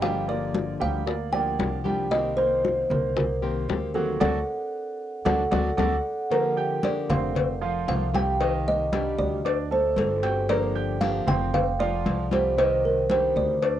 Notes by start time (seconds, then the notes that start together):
Already playing: G1
0.01 D3 F3 G3 A#3 D4 G4 F5 G5, high bongo, high conga
0.28 A#3 A#4 D5, high bongo, high conga
0.54 high bongo, high conga
0.80 D2 G3 G4 F5 G5, high bongo, high conga
1.06 A#3 A#4 D5, muted nylon-string guitar stroke, high bongo, high conga
1.32 F3 A#3 D4 G4 A#4 D5 G5, high conga
1.58 C2 F3 A#3 D4 G4, high bongo, low bongo, high conga
1.84 F3 G3 A#3 D4 G4 G5, high bongo, high conga
2.10 C3 D#3 A#3 C4 G4 D#5, high bongo, high conga
2.37 A#3 A#4 C5, high bongo, high conga
2.65 high bongo, high conga
2.90 C2 A#3 A#4 C5, high bongo, high conga, low conga
3.16 A#4, muted nylon-string guitar stroke, high bongo, high conga, low conga
3.42 D#3 A#3 C4 G4 A#4 C5, high conga
3.69 D2 D#3 A#3 C4 G4, high bongo, low bongo, high conga
3.94 D#3 F#3 A#3 C4 F#4 G4 A4 F#5, high bongo
4.20 D2 F#3 A3 D4 F#4 A4 D5 F#5, low bongo, high conga
5.25 D2 F#3 A3 D4 F#4 A4 D5 F#5, low bongo, high conga
5.51 D2 F#3 A3 D4 F#4 A4 D5 F#5, low bongo, high conga
5.77 D2 F#3 A3 D4 F#4 A4 D5 F#5, low bongo, high conga
6.31 D3 F3 A#3 D4 G4 A#4 A#5, cowbell, high conga
6.57 G4 G5 G6, high conga
6.82 D3 F3 A#3 D4 G4 D5, cowbell, high conga
7.09 F1 C4 C5 F5 C6, cowbell, high conga, low conga
7.35 muted nylon-string guitar stroke, cowbell, high conga, low conga
7.61 F3 F4 F5, high conga
7.87 C2 F3 A3 C4 F4 F5, cowbell, high conga
8.13 F3 G3 A3 C4 F4 G4 G5, cowbell, high conga
8.40 C3 D#3 G3 G4 D#5, cowbell, high conga
8.66 D#5, high conga
8.92 C3 D#3 G3 D4 G4 G5, cowbell, high conga
9.18 D2 D5, high conga
9.45 D4 D5 D6, muted nylon-string guitar stroke, cowbell, high conga
9.71 A3 A4 C5 A5, high conga
9.96 G1 D3 A3 C4 F#4 A4, cowbell, high conga
10.23 A3 C4 F#4 G4 G5 G6, cowbell
10.49 D3 F3 A#3 D4 G4 A#4 D5 A#5, cowbell, high conga
10.75 G4 G5 G6, high conga
11.01 D3 F3 A#3 D4 G4 F5, cowbell, high conga
11.27 F1 C4 C5 G5 C6, cowbell, high conga, low conga
11.53 F5, muted nylon-string guitar stroke, cowbell, high conga, low conga
11.79 F3 F4 D5 F5, high conga
12.05 C2 F3 A3 C4 F4, cowbell, high conga
12.31 F3 G3 A3 C4 F4 G4 C5 G5, cowbell, high conga
12.57 C3 D#3 G3 G4 C5 D#5, cowbell, high conga
12.84 A#4, high conga
13.09 C3 D#3 G3 D4 G4 C5 G5, cowbell, high conga
13.36 D2 D5, high conga
13.62 D4 D5 D6, muted nylon-string guitar stroke, cowbell, high conga